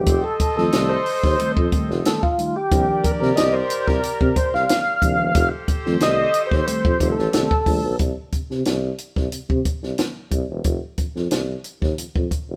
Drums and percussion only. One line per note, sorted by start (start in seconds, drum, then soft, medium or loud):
0.06 kick loud
0.06 closed hi-hat medium
0.40 kick medium
0.40 closed hi-hat medium
0.58 snare soft
0.72 snare loud
0.72 closed hi-hat medium
1.06 open hi-hat medium
1.24 kick loud
1.24 snare soft
1.39 closed hi-hat loud
1.57 kick loud
1.72 kick loud
1.72 closed hi-hat medium
1.91 snare soft
2.05 snare loud
2.05 closed hi-hat medium
2.23 kick medium
2.39 closed hi-hat medium
2.71 kick loud
2.71 closed hi-hat medium
3.04 kick medium
3.04 closed hi-hat medium
3.23 snare soft
3.37 snare loud
3.37 closed hi-hat medium
3.70 closed hi-hat medium
3.88 kick medium
3.88 snare soft
4.03 closed hi-hat medium
4.21 kick medium
4.36 kick medium
4.36 closed hi-hat medium
4.55 snare soft
4.69 snare loud
4.69 closed hi-hat loud
5.02 kick loud
5.02 closed hi-hat medium
5.35 kick loud
5.35 closed hi-hat medium
5.68 kick medium
5.68 closed hi-hat medium
5.86 snare soft
6.00 snare loud
6.00 closed hi-hat medium
6.34 closed hi-hat medium
6.51 kick medium
6.51 snare soft
6.67 closed hi-hat loud
6.85 kick loud
7.00 kick medium
7.00 closed hi-hat medium
7.19 snare soft
7.33 snare loud
7.33 closed hi-hat medium
7.51 kick medium
7.66 kick loud
7.66 open hi-hat medium
7.99 kick loud
7.99 closed hi-hat medium
8.32 kick medium
8.32 closed hi-hat medium
8.51 snare soft
8.65 snare loud
8.65 closed hi-hat medium
8.98 closed hi-hat medium
9.16 kick medium
9.16 snare soft
9.32 closed hi-hat medium
9.50 kick medium
9.65 kick medium
9.65 closed hi-hat medium
9.83 snare soft
9.98 snare loud
9.98 closed hi-hat medium
10.31 kick medium
10.31 closed hi-hat medium
10.64 kick medium
10.64 closed hi-hat medium
10.98 kick medium
10.98 closed hi-hat medium
11.16 snare soft
11.31 snare loud
11.31 closed hi-hat medium
11.64 closed hi-hat medium
11.82 kick medium
11.82 snare soft
11.98 closed hi-hat medium
12.16 kick medium
12.31 kick medium
12.31 closed hi-hat medium